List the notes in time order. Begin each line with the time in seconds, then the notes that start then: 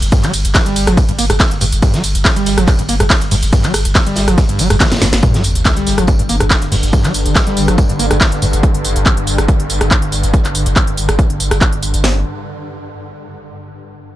0.02 G1, closed hi-hat, ride, tambourine
0.12 G2, kick, closed hi-hat, ride, tambourine
0.23 G1 G3, clap, closed hi-hat, ride
0.34 G1, open hi-hat, ride, tambourine
0.45 G1, closed hi-hat, ride, tambourine
0.54 G2, kick, snare, clap, closed hi-hat, ride, tambourine
0.66 G1 G3, closed hi-hat, ride
0.76 G1, open hi-hat, ride, tambourine
0.87 G1 F3, cross-stick, closed hi-hat, ride, tambourine
0.97 F2, kick, closed hi-hat, ride, tambourine
1.09 G1 G2, closed hi-hat, ride
1.18 G1 A#3, open hi-hat, ride, tambourine
1.30 G1 G2, cross-stick, closed hi-hat, ride, tambourine
1.40 kick, snare, clap, closed hi-hat, ride, tambourine
1.51 G1, closed hi-hat, ride
1.61 G1 G2, open hi-hat, ride, tambourine
1.72 G1, closed hi-hat, ride, tambourine
1.82 G2, kick, closed hi-hat, ride, tambourine
1.94 G1 G3, snare, closed hi-hat, ride
2.04 G1, open hi-hat, ride, tambourine
2.15 G1, closed hi-hat, ride, tambourine
2.24 G2, kick, snare, clap, closed hi-hat, ride, tambourine
2.36 G1 G3, closed hi-hat, ride
2.45 G1, snare, open hi-hat, ride, tambourine
2.58 G1 F3, cross-stick, closed hi-hat, ride, tambourine
2.68 F2, kick, clap, closed hi-hat, ride, tambourine
2.79 G1 G2, closed hi-hat, ride
2.88 G1 A#3, open hi-hat, ride, tambourine
3.00 G1 G2, cross-stick, closed hi-hat, ride, tambourine
3.10 kick, snare, clap, closed hi-hat, ride, tambourine
3.21 G1, closed hi-hat, ride
3.31 G1 G2, open hi-hat, ride, tambourine
3.43 G1, closed hi-hat, ride, tambourine
3.53 G2, kick, closed hi-hat, ride, tambourine
3.64 G1 G3, clap, closed hi-hat, ride
3.74 G1, cross-stick, open hi-hat, ride, tambourine
3.85 G1, closed hi-hat, ride, tambourine
3.95 G2, kick, snare, clap, closed hi-hat, ride, tambourine
4.06 G1 G3, closed hi-hat, ride
4.16 G1, snare, open hi-hat, ride, tambourine
4.28 G1 F3, cross-stick, closed hi-hat, ride, tambourine
4.37 F2, kick, snare, closed hi-hat, ride, tambourine
4.49 G1 G2, closed hi-hat, ride
4.59 G1 G3, open hi-hat, ride, tambourine
4.70 G1 G2, cross-stick, closed hi-hat, ride, tambourine
4.80 D3, kick, snare, clap, closed hi-hat, ride, tambourine
4.86 snare, tambourine
4.91 G1 G2, snare, closed hi-hat, ride, tambourine
4.96 snare, tambourine
5.01 G1 G2, snare, open hi-hat, ride, tambourine
5.13 G1, snare, closed hi-hat, ride, tambourine
5.22 G2 D3, kick, closed hi-hat, tambourine, sub drop
5.34 G1 G3, snare, closed hi-hat
5.43 G1, open hi-hat, tambourine
5.55 G1, closed hi-hat, tambourine
5.65 G2, kick, snare, clap, closed hi-hat, tambourine
5.76 G1 G3, closed hi-hat
5.87 G1, snare, open hi-hat, tambourine
5.98 G1 F3, cross-stick, closed hi-hat, tambourine
6.07 F2, kick, closed hi-hat, tambourine
6.19 G1 G2, closed hi-hat
6.29 G1 A#3, open hi-hat, tambourine
6.40 G1 G2, cross-stick, closed hi-hat, tambourine
6.50 kick, snare, clap, closed hi-hat, tambourine
6.62 G1, closed hi-hat
6.72 G1 G2, open hi-hat, tambourine
6.83 G1, closed hi-hat, tambourine
6.93 G2, kick, closed hi-hat, tambourine
7.04 G1 G3, clap, closed hi-hat
7.14 G1, open hi-hat, tambourine
7.26 G1, closed hi-hat, tambourine
7.36 G2, kick, snare, clap, closed hi-hat, tambourine
7.47 G1 G3, closed hi-hat
7.57 G1, open hi-hat, tambourine
7.68 G1 F3, cross-stick, closed hi-hat, tambourine
7.78 F2, kick, closed hi-hat, tambourine
7.89 G1 G2, closed hi-hat
7.99 G1 A#3, open hi-hat, tambourine
8.11 G1 G2, cross-stick, closed hi-hat, tambourine
8.20 kick, snare, clap, closed hi-hat, tambourine
8.32 G1, closed hi-hat
8.42 G1 G2, open hi-hat, tambourine
8.53 G1, closed hi-hat, tambourine
8.63 kick, closed hi-hat, tambourine
8.74 G1, closed hi-hat
8.85 G1, open hi-hat, tambourine
8.96 G1, closed hi-hat, tambourine
9.06 kick, clap, closed hi-hat, tambourine
9.17 G1, closed hi-hat
9.27 G1, open hi-hat, tambourine
9.38 G1, cross-stick, closed hi-hat, tambourine
9.48 kick, closed hi-hat, tambourine
9.60 G1, closed hi-hat
9.70 G1, open hi-hat, tambourine
9.81 G1, cross-stick, closed hi-hat, tambourine
9.91 kick, clap, closed hi-hat
10.02 G1, closed hi-hat
10.12 G1, open hi-hat, tambourine
10.23 G1, closed hi-hat, tambourine
10.34 kick, closed hi-hat, tambourine
10.45 G1, clap, closed hi-hat
10.55 G1, open hi-hat, tambourine
10.66 G1, closed hi-hat, tambourine
10.76 kick, clap, closed hi-hat, tambourine
10.87 G1, closed hi-hat
10.97 G1, open hi-hat, tambourine
11.09 G1, cross-stick, closed hi-hat, tambourine
11.19 kick, closed hi-hat, tambourine
11.30 G1, closed hi-hat
11.40 G1, open hi-hat, tambourine
11.51 G1, cross-stick, closed hi-hat, tambourine
11.61 kick, clap, closed hi-hat, tambourine
11.73 G1, closed hi-hat
11.83 G1, open hi-hat, tambourine
11.94 G1, closed hi-hat, tambourine
12.04 G1, snare